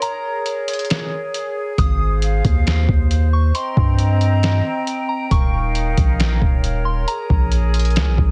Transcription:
Already playing: flute section A#4 C#5
0.02 flute section G#4, synth bell A#5, closed hi-hat
0.46 closed hi-hat
0.68 closed hi-hat
0.73 closed hi-hat
0.79 closed hi-hat
0.85 closed hi-hat
0.90 snare, closed hi-hat
1.34 closed hi-hat
1.78 808-style bass G#1, flute section C5 F5, synth bell D#6, kick, closed hi-hat
2.22 closed hi-hat
2.45 808-style bass D#2, kick, closed hi-hat
2.67 snare, closed hi-hat
2.89 808-style bass D#2, kick
3.11 closed hi-hat
3.33 synth bell C#6
3.55 flute section C4 D#5 G5 A#5, synth bell C6, closed hi-hat
3.77 808-style bass G2, kick
3.98 closed hi-hat
4.21 closed hi-hat
4.43 snare, closed hi-hat
4.87 closed hi-hat
5.09 synth bell A#5
5.31 808-style bass D#1, flute section D#4 A#4 C#5 F5, synth bell C#6, kick, closed hi-hat
5.75 closed hi-hat
5.97 808-style bass A#1, kick, closed hi-hat
6.20 snare, closed hi-hat
6.42 808-style bass D#1, kick
6.64 closed hi-hat
6.85 synth bell C6
7.08 flute section G#4, synth bell A#5, closed hi-hat
7.30 808-style bass A#1, kick
7.52 closed hi-hat
7.74 closed hi-hat
7.79 closed hi-hat
7.85 closed hi-hat
7.90 closed hi-hat
7.96 808-style bass C#2, snare, closed hi-hat
8.07 808-style bass A#1
8.18 808-style bass A#1, kick

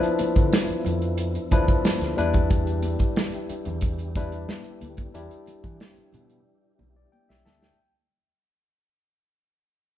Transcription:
Already playing: tine electric piano F3 D4 E4 B4, tonewheel organ F3 B3 E4
0.03 closed hi-hat
0.19 muted fingered electric bass stroke, closed hi-hat, muted conga
0.36 fingered electric bass D3, kick, closed hi-hat
0.53 snare, tambourine, high conga
0.68 muted fingered electric bass stroke, closed hi-hat
0.85 fingered electric bass F2, closed hi-hat, low conga
1.02 closed hi-hat
1.18 closed hi-hat
1.35 closed hi-hat
1.51 fingered electric bass D2, tine electric piano F3 D4 E4 B4, kick, closed hi-hat, muted conga, low conga
1.68 kick, closed hi-hat
1.85 snare, tambourine, high conga
2.01 fingered electric bass D2, snare, closed hi-hat
2.17 fingered electric bass E2, tine electric piano G3 D4 E4 B4, tonewheel organ D4 G4, closed hi-hat, high conga
2.33 kick, closed hi-hat, high conga
2.50 kick, closed hi-hat
2.67 closed hi-hat
2.82 closed hi-hat, muted conga
2.99 kick, closed hi-hat
3.16 snare, high conga
3.32 closed hi-hat
3.50 muted fingered electric bass stroke, closed hi-hat
3.65 fingered electric bass E2, closed hi-hat, low conga
3.81 kick, closed hi-hat
3.99 closed hi-hat
4.15 tine electric piano G3 D4 E4 B4, kick, closed hi-hat, muted conga
4.32 closed hi-hat
4.48 snare, high conga
4.64 closed hi-hat
4.81 fingered electric bass D2, closed hi-hat, high conga
4.97 kick, closed hi-hat, high conga
5.14 fingered electric bass E2, tine electric piano G3 D4 E4 G4, closed hi-hat, muted conga
5.31 closed hi-hat
5.46 muted fingered electric bass stroke, closed hi-hat, muted conga
5.64 fingered electric bass E3, kick, closed hi-hat
5.80 snare, high conga
5.96 muted fingered electric bass stroke, closed hi-hat
6.13 fingered electric bass B2, closed hi-hat, low conga
6.30 closed hi-hat
6.79 fingered electric bass B1, muted conga, low conga
6.96 tine electric piano D5
7.12 tine electric piano G5, high conga
7.29 fingered electric bass B1, tine electric piano E5, snare
7.46 fingered electric bass D2, tine electric piano E5 A5, snare, high conga
7.62 tine electric piano G5, snare

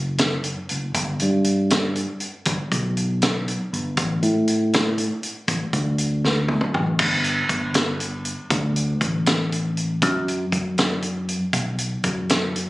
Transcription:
Already playing: fingered electric bass F#1
0.18 snare, closed hi-hat
0.44 closed hi-hat
0.69 fingered electric bass F#1, closed hi-hat
0.95 fingered electric bass G1, kick, closed hi-hat
1.20 fingered electric bass G2, closed hi-hat
1.44 closed hi-hat
1.70 snare, closed hi-hat
1.96 closed hi-hat
2.20 closed hi-hat
2.45 fingered electric bass G1, kick, closed hi-hat
2.72 fingered electric bass B1, kick, closed hi-hat
2.97 closed hi-hat
3.22 snare, closed hi-hat
3.48 closed hi-hat
3.73 fingered electric bass G1, closed hi-hat
3.97 fingered electric bass A1, kick, closed hi-hat
4.23 fingered electric bass A2, closed hi-hat
4.48 closed hi-hat
4.73 snare, closed hi-hat
4.98 closed hi-hat
5.23 closed hi-hat
5.48 fingered electric bass A1, kick, closed hi-hat
5.73 fingered electric bass D2, kick, closed hi-hat
5.98 closed hi-hat
6.25 snare
6.48 high tom
6.61 mid tom
6.74 fingered electric bass A1, mid tom
6.99 fingered electric bass G1, kick, crash
7.24 closed hi-hat
7.49 fingered electric bass G1, kick, closed hi-hat
7.74 snare, closed hi-hat
8.00 closed hi-hat
8.25 closed hi-hat
8.50 fingered electric bass D2, kick, closed hi-hat
8.76 closed hi-hat
9.01 fingered electric bass A1, kick, closed hi-hat
9.26 snare, closed hi-hat
9.52 closed hi-hat
9.77 closed hi-hat
10.02 fingered electric bass F#2, kick, closed hi-hat
10.28 closed hi-hat
10.52 fingered electric bass F#2, kick, closed hi-hat
10.78 snare, closed hi-hat
11.02 closed hi-hat
11.29 closed hi-hat
11.53 fingered electric bass B1, kick, closed hi-hat
11.78 closed hi-hat
12.04 fingered electric bass F#2, kick, closed hi-hat
12.29 snare, closed hi-hat
12.56 closed hi-hat

